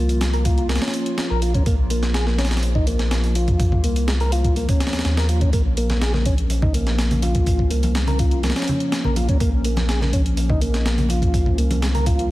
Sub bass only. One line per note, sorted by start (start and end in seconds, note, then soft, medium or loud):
0.00 0.79 C2 medium
1.31 1.63 A#1 medium
1.66 3.81 A#1 loud
3.84 4.66 C2 medium
4.93 5.03 D#2 soft
5.05 5.50 D#2 medium
5.53 7.68 A#1 loud
7.71 8.53 C2 medium
9.05 9.38 A#1 medium
9.40 11.55 A#1 loud
11.58 12.31 C2 medium